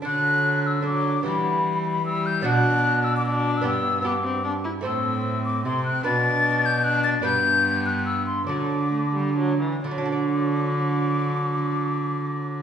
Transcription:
X:1
M:3/4
L:1/16
Q:1/4=150
K:Dmix
V:1 name="Flute"
f'6 e'2 d'4 | b6 b2 e'2 g'2 | f'6 e' d' d'3 e' | e'4 d'6 z2 |
e'6 d'2 c'2 f'2 | a'6 g'2 f'2 a'2 | g'6 f'2 e'2 c'2 | d'8- d'2 z2 |
d'12- | d'12 |]
V:2 name="Lute"
[DA]8 [DA]4 | [B,G]12 | [B,DF]12 | [B,DG]4 [B,DG]8 |
[A,Cc]12 | [DB]12 | [DB]12 | [DA]12 |
[D,F,DAd]12- | [D,F,DAd]12 |]
V:3 name="Lute" clef=bass
D,12 | E,12 | B,,12 | G,,8- G,,2 z2 |
A,,8 C,4 | B,,12 | G,,12 | D,8- D,2 z2 |
z12 | z12 |]
V:4 name="Viola"
F,8 F,4 | G,8 G,4 | D8 D4 | B,4 B,2 C2 D2 E2 |
C8 C4 | D8 D4 | B,12 | F,4 A,2 G,2 F,2 E,2 |
F,12- | F,12 |]
V:5 name="Cello" clef=bass
D,12 | E,12 | B,,12 | G,,8- G,,2 z2 |
A,,8 C,4 | B,,12 | G,,12 | D,8- D,2 z2 |
D,12- | D,12 |]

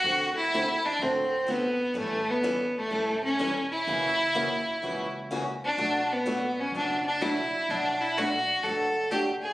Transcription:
X:1
M:4/4
L:1/8
Q:"Swing" 1/4=126
K:Bm
V:1 name="Violin"
F E2 D =C2 B,2 | A, B,2 A,2 C2 E- | E4- E z2 D- | D B,2 C D D E2 |
D E F2 A2 G ^G |]
V:2 name="Steel-string acoustic guitar"
[D,A,=CFA] z [D,A,CFA] z [D,A,CFA] z [D,A,CFA] z | [E,G,CEA] z [E,G,CEA] z [E,G,CEA] z [E,G,CEA] z | [C,E,^A,CF] z [C,E,A,CF] z [C,E,A,CF] z [C,E,A,CF] z | [B,,F,A,DF] z [B,,F,A,DF] z [B,,F,A,DF] z [B,,F,A,DF] z |
[B,,F,A,DF] z [B,,F,A,DF] z [B,,F,A,DF] z [B,,F,A,DF] z |]
V:3 name="Upright bass" clef=bass
D,,4 A,,,4 | A,,,4 E,,,4 | F,,,4 C,,4 | B,,,4 F,,,4 |
B,,,4 F,,,4 |]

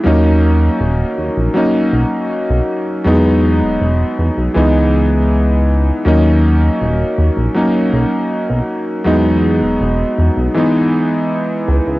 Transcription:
X:1
M:4/4
L:1/16
Q:1/4=80
K:C#dor
V:1 name="Electric grand piano"
[F,A,CD]8 [F,A,CD]8 | [F,G,B,D]8 [E,G,B,D]8 | [F,A,CD]8 [F,A,CD]8 | [F,G,B,D]8 [E,G,B,D]8 |]
V:2 name="Analog synth bass" clef=bass
D,,3 z D,,, z D,, A,,, z2 B,,, z2 B,,, z2 | E,,3 E,,, E,,, z E,, B,,, C,,6- C,, z | D,,3 z D,,, z D,, A,,, z2 B,,, z2 B,,, z2 | E,,3 E,,, E,,, z E,, B,,, z6 C,, C,, |]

